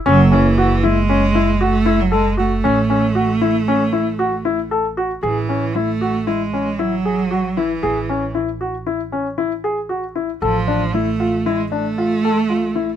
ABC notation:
X:1
M:5/4
L:1/16
Q:1/4=116
K:A
V:1 name="Grand piano"
C2 C2 F2 E2 C2 E2 F2 E2 A2 F2 | C2 C2 F2 E2 C2 E2 F2 E2 A2 F2 | G2 C2 E2 F2 E2 C2 E2 G2 F2 E2 | G2 C2 E2 F2 E2 C2 E2 G2 F2 E2 |
A2 D2 E2 =F2 E2 D2 F2 A2 F2 E2 |]
V:2 name="Cello" clef=bass
F,2 E,4 G,6 A,3 F, G,2 A,2- | A,16 z4 | E,4 A,4 G,4 F,6 E,2- | E,4 z16 |
=F,4 A,4 G,2 A,8- A,2 |]
V:3 name="Upright bass" clef=bass
F,,,16- F,,,4 | A,,,16- A,,,4 | A,,,16- A,,,4 | A,,,16- A,,,4 |
A,,,16- A,,,4 |]